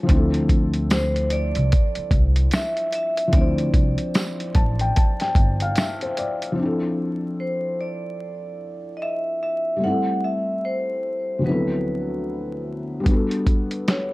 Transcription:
0.00 3.26 F3 medium
0.00 0.11 G3 medium
0.00 0.06 C4 medium
0.00 0.11 C#4 medium
0.00 0.11 F4 medium
0.00 0.13 A4 medium
0.06 1.52 D2 loud
0.06 3.28 C4 medium
0.06 3.30 D4 medium
0.06 kick loud
0.06 closed hi-hat medium
0.13 3.31 E4 medium
0.13 3.33 A4 medium
0.34 closed hi-hat soft
0.49 kick medium
0.49 closed hi-hat medium
0.74 closed hi-hat soft
0.90 1.33 C5 medium
0.90 finger snap medium
0.90 snare loud
0.90 closed hi-hat medium
0.90 tambourine medium
1.16 closed hi-hat soft
1.30 2.09 D5 loud
1.30 closed hi-hat medium
1.55 1.69 C2 medium
1.55 closed hi-hat soft
1.72 kick medium
1.72 closed hi-hat medium
1.95 muted upright bass stroke soft
1.95 closed hi-hat soft
2.11 2.45 C2 medium
2.11 kick medium
2.11 closed hi-hat medium
2.36 closed hi-hat soft
2.51 2.94 E5 loud
2.51 finger snap medium
2.51 snare loud
2.51 closed hi-hat medium
2.51 tambourine medium
2.77 closed hi-hat soft
2.92 3.32 E5 loud
2.92 closed hi-hat medium
3.17 closed hi-hat medium
3.28 6.50 F3 medium
3.28 6.52 C4 medium
3.33 3.67 D2 loud
3.33 6.54 D4 medium
3.33 5.74 D5 medium
3.33 kick loud
3.33 closed hi-hat medium
3.38 6.56 E4 medium
3.38 6.01 C5 medium
3.58 closed hi-hat soft
3.74 3.95 C2 medium
3.74 kick medium
3.74 closed hi-hat medium
3.98 closed hi-hat soft
4.14 finger snap medium
4.14 snare loud
4.14 closed hi-hat medium
4.14 tambourine medium
4.40 closed hi-hat soft
4.55 4.89 A1 medium
4.55 4.78 A5 medium
4.55 kick medium
4.55 closed hi-hat medium
4.79 4.95 G5 medium
4.79 closed hi-hat soft
4.96 5.19 A5 medium
4.96 kick medium
4.96 closed hi-hat medium
5.20 5.58 G5 medium
5.20 snare soft
5.20 closed hi-hat soft
5.35 5.69 G1 medium
5.35 kick medium
5.35 closed hi-hat medium
5.60 5.76 F5 medium
5.60 closed hi-hat soft
5.76 6.00 E5 medium
5.76 finger snap medium
5.76 snare loud
5.76 closed hi-hat medium
5.76 tambourine medium
6.01 6.16 C5 medium
6.01 closed hi-hat soft
6.17 6.56 D5 medium
6.17 closed hi-hat medium
6.42 closed hi-hat medium
6.52 9.75 F3 medium
6.52 9.77 C4 medium
6.59 9.78 D4 medium
6.59 9.80 E4 medium
6.65 9.82 A4 medium
7.40 7.81 C5 medium
7.81 8.92 D5 medium
8.97 9.01 D#5 medium
9.02 9.39 E5 medium
9.43 9.80 E5 medium
9.77 11.38 G3 medium
9.77 11.40 A3 medium
9.83 11.41 C4 soft
9.83 11.43 E4 medium
9.83 10.24 F#5 medium
9.90 11.45 A4 medium
10.24 10.65 E5 medium
10.65 11.41 C5 medium
11.39 13.00 D2 medium
11.39 11.51 F3 soft
11.44 13.05 F#3 medium
11.44 13.02 B3 medium
11.44 13.04 C4 soft
11.44 12.63 B4 medium
11.49 13.06 E4 medium
11.49 13.07 A4 medium
13.00 14.13 G3 medium
13.00 14.13 B3 medium
13.06 14.13 D4 medium
13.06 14.13 F#4 medium
13.06 kick loud
13.06 closed hi-hat medium
13.13 14.13 A4 medium
13.31 closed hi-hat soft
13.47 kick medium
13.47 closed hi-hat medium
13.71 closed hi-hat soft
13.88 14.13 C#5 medium
13.88 finger snap medium
13.88 snare loud
13.88 closed hi-hat medium

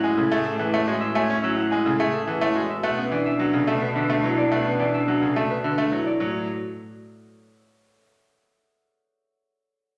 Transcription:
0.00 2.68 A2 medium
0.00 0.22 G#3 medium
0.00 2.65 C#4 medium
0.00 0.21 E4 loud
0.00 0.44 A4 loud
0.00 0.86 C#5 medium
0.00 0.99 E5 medium
0.00 0.58 F#5 loud
0.00 1.14 G#5 medium
0.17 0.35 C#3 medium
0.17 0.35 A4 medium
0.31 0.49 A3 loud
0.31 0.49 G#4 medium
0.31 1.98 G#4 loud
0.45 2.12 A4 medium
0.59 0.77 E3 medium
0.59 0.77 E4 medium
0.59 1.55 F#5 medium
0.73 0.92 A3 loud
0.73 0.91 C#5 medium
0.87 1.06 G#3 medium
0.87 1.05 F#4 loud
0.87 2.54 C#5 medium
1.01 1.42 E5 medium
1.15 1.33 A3 loud
1.15 1.33 C#5 medium
1.15 1.70 G#5 loud
1.29 1.47 C#4 loud
1.29 1.48 C#4 medium
1.43 1.62 F#3 medium
1.43 1.61 E4 medium
1.43 2.69 E5 medium
1.57 2.26 F#5 loud
1.71 1.90 G#3 medium
1.71 1.89 E4 loud
1.71 2.85 G#5 medium
1.85 2.04 C#3 medium
1.85 2.03 A4 medium
1.99 2.18 A3 loud
1.99 2.17 G#4 medium
1.99 2.86 G#4 loud
2.13 3.67 A4 medium
2.27 2.46 E3 medium
2.27 2.45 E4 medium
2.27 2.82 F#5 medium
2.41 2.60 A3 loud
2.41 2.59 C#5 medium
2.55 2.74 G#3 medium
2.55 2.73 F#4 loud
2.55 4.23 C#5 medium
2.70 2.86 E5 medium
2.83 6.05 B2 medium
2.83 3.02 A3 loud
2.83 6.02 D4 medium
2.83 3.01 B4 medium
2.83 3.39 F#5 loud
2.97 3.16 B3 medium
2.97 3.16 C#4 loud
3.11 3.30 E3 medium
3.11 3.30 D4 medium
3.11 4.36 D5 medium
3.26 3.95 E5 loud
3.39 3.58 F#3 medium
3.39 3.58 D4 loud
3.39 4.51 F#5 medium
3.53 3.72 C#3 medium
3.53 3.72 A4 medium
3.67 3.86 A3 loud
3.67 3.86 F#4 medium
3.67 5.35 A4 medium
3.82 5.49 B4 medium
3.96 4.14 D3 medium
3.96 4.14 D4 medium
3.96 4.93 E5 medium
4.09 4.28 A3 loud
4.09 4.28 B4 medium
4.24 4.42 F#3 medium
4.24 4.42 E4 loud
4.24 5.91 C#5 medium
4.38 4.79 D5 medium
4.51 4.70 A3 loud
4.51 4.70 B4 medium
4.51 5.07 F#5 loud
4.65 4.84 B3 medium
4.65 4.84 C#4 loud
4.79 4.98 E3 medium
4.79 4.98 D4 medium
4.79 6.05 D5 medium
4.94 5.63 E5 medium
5.08 5.26 F#3 medium
5.08 5.26 D4 loud
5.08 6.22 F#5 medium
5.22 5.40 C#3 medium
5.22 5.40 A4 medium
5.36 5.54 A3 loud
5.36 5.54 F#4 medium
5.36 7.90 A4 loud
5.50 6.22 B4 medium
5.64 5.82 D3 medium
5.64 5.82 D4 medium
5.64 7.90 E5 medium
5.78 5.96 A3 loud
5.78 5.96 B4 medium
5.91 6.10 F#3 medium
5.91 6.10 E4 medium
5.91 6.19 C#5 medium
6.06 6.22 D5 medium
6.20 6.46 A2 medium
6.20 6.46 F#3 medium
6.20 6.46 F#4 medium
6.20 6.46 C#5 medium

